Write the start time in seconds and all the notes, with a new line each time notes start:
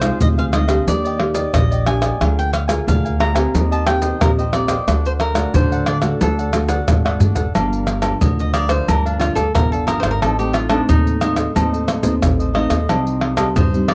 Already playing: C2 C3 C5
0.01 G#3 D#4 F4 G#4 C5 F5, pandeiro, tamborim, maracas, surdo
0.21 D2 C3 F4 G#4 C5 D#5 F5, pandeiro, maracas, surdo
0.38 G#4 C5 F5, pandeiro, maracas
0.52 G#3 D#4 F4 G#4 C5 D#5 F5, pandeiro, tamborim, maracas
0.68 A#3 D4 G4 G#4 C5 F5, pandeiro, tamborim, maracas, surdo
0.87 D#2 D#3 D4 G4 D5 D#5, pandeiro, maracas, surdo
1.04 G4 D5 D#5, pandeiro, maracas
1.19 A#3 G4, muted cavaquinho stroke, pandeiro, tamborim, surdo
1.34 G4 D5 D#5, pandeiro, maracas, surdo
1.54 A#1 A#2 D#5, pandeiro, tamborim, maracas, surdo
1.71 G4 D5 D#5, pandeiro, maracas
1.86 A#3 D4 G4 D5 D#5 G#5, pandeiro, tamborim, maracas
2.02 G4 D5 D#5, pandeiro, tamborim, maracas, surdo
2.21 D2 D3 A#3 D4 F4 G#4 A#4 F5 G#5, pandeiro, tamborim, maracas, surdo
2.39 G5, pandeiro, maracas
2.53 F5, pandeiro, tamborim, maracas
2.68 A#3 F4 G#4 A#4 F5 G#5, pandeiro, tamborim, maracas, surdo
2.87 D2 D3 D4 A#4 F5 G#5, pandeiro, maracas, surdo
3.05 A#4 F5 G#5, pandeiro, maracas
3.19 A#3 D4 F4 G#4 A#4 F5 G#5 A#5, pandeiro, tamborim
3.35 A#3 C4 G4 A#4 F5 G#5, pandeiro, tamborim, maracas, surdo
3.54 D#2 D#3 D#4 G4 C5 D#5, pandeiro, maracas, surdo
3.71 G4 C5 D#5 A5, pandeiro, maracas
3.87 A#3 C4 G4 G5, pandeiro, tamborim, maracas, surdo
4.02 G4 C5 D#5, pandeiro, maracas, surdo
4.21 A#1 A#2 A#3 C4 G4 A#4, pandeiro, tamborim, maracas, surdo
4.38 G4 C5 D#5, pandeiro, maracas
4.53 A#3 C4 D#4 G4 C5 D5 D#5, pandeiro, tamborim, maracas
4.68 G4 C5 D#5, pandeiro, tamborim, maracas, surdo
4.88 D2 D3 A3 D4 F#4 A4 D5 F#5, pandeiro, tamborim, maracas, surdo
5.05 C5, pandeiro, maracas
5.20 A#4, muted cavaquinho stroke, pandeiro, tamborim, maracas
5.35 A3 D4 F#4 A4 D5 F#5, pandeiro, tamborim, maracas, surdo
5.54 A2 D3 D4 A4 C5 D5 F#5, pandeiro, maracas, surdo
5.72 A4 D5 F#5, pandeiro, maracas
5.86 D4 A4 D5 F#5, pandeiro, tamborim, maracas
6.02 A3 D4 F#4 A4 D5 F#5, pandeiro, tamborim, maracas, surdo
6.21 D2 D3 D4 A4 D5 F#5, pandeiro, maracas, surdo
6.39 A4 D5 F#5, pandeiro, maracas
6.53 A3 D4 F#4, muted cavaquinho stroke, pandeiro, tamborim, maracas
6.69 A4 D5 F#5, pandeiro, maracas, surdo
6.88 G#1, pandeiro, tamborim, maracas, surdo
7.05 A4 D5 F#5, pandeiro, tamborim, maracas
7.19 A3 D4 F#4 A4 D5 F#5, surdo, pandeiro, maracas
7.35 A4 D5 F#5, pandeiro, maracas, surdo
7.54 G1 G2 F3 A#3 D4 G4 A#4 D5 F5, pandeiro, tamborim, low agogo, maracas, surdo
7.73 pandeiro, maracas
7.87 G4 A#4 D5 F5, pandeiro, tamborim, maracas
8.02 F3 A#3 D4 G4 A#4 D5 F5, pandeiro, tamborim, low agogo, maracas, surdo
8.21 D2 D3, pandeiro, high agogo, maracas, surdo
8.39 D#5, pandeiro, maracas
8.53 G4 A#4 D5 F5, pandeiro, tamborim, high agogo, maracas
8.69 F3 A#3 D4 A#4 C5 D5 F5, pandeiro, tamborim, maracas, surdo
8.88 D2 G2 G4 A#4 D5 F5, pandeiro, low agogo, maracas, surdo
9.06 D4 A#4 D5 F5, pandeiro, maracas
9.20 F3 A#3 D4 F4 G4 A#4 D5 F5, pandeiro, tamborim, maracas, surdo
9.35 D2 G4 A4 A#4 D5 F5, pandeiro, maracas, surdo
9.55 G1 D3 F3 A#3 D4 A#4, pandeiro, tamborim, maracas, surdo
9.72 A4 A#4 D5 F5, pandeiro, maracas
9.87 F3 A#3 D4 G4 A#4 D5 F5, pandeiro, tamborim, high agogo, maracas
10.00 G#1 C5 D5 F5, pandeiro, tamborim, maracas, surdo
10.04 A#4
10.11 A#4
10.21 A1 A2 A3 C4 D#4 A4 C5 D#5, pandeiro, tamborim, low agogo, maracas, surdo
10.39 A3 C4 D#4 G4, pandeiro, maracas
10.53 D#4 F4 A4 C5 D#5, pandeiro, tamborim, maracas
10.69 A3 C4 D4 D#4 A4 C5 D#5, pandeiro, tamborim, low agogo, maracas, surdo
10.89 D#2 A2 D#4, pandeiro, high agogo, maracas, surdo
11.07 pandeiro, maracas
11.20 A3 C4 D#4 A4 C5 D#5, pandeiro, tamborim, high agogo, maracas
11.36 A4 C5 D#5, pandeiro, tamborim, maracas, surdo
11.55 D#2 A2 A3 C4 D#4 A4 C5 D#5, pandeiro, low agogo, maracas, surdo
11.72 A4 C5 D#5, pandeiro, maracas
11.87 D#4 A4 C5 D#5, pandeiro, tamborim, maracas, surdo
12.03 D#2 A3 C4 D#4 A4 C5 D#5, pandeiro, maracas, surdo
12.22 A1 A2, pandeiro, tamborim, maracas, surdo
12.39 A4 C5 D#5, pandeiro, maracas
12.54 A3 C4 D#4 A4 C5 D#5, pandeiro, tamborim, high agogo
12.69 D#2 A4 C5 D#5, pandeiro, tamborim, maracas, surdo
12.89 C2 C3 G3 C4 D#4 G4 C5 D#5, pandeiro, tamborim, low agogo, maracas, surdo
13.07 pandeiro, maracas
13.20 D#4 G4 C5 D#5, pandeiro, tamborim
13.36 G3 C4 D#4 G4 C5 D#5, pandeiro, tamborim, low agogo, maracas, surdo
13.56 G2 C5, pandeiro, high agogo, maracas, surdo
13.74 G3 C4 D#4, pandeiro, maracas
13.88 D#4 G4 C5 D5 D#5, pandeiro, tamborim, high agogo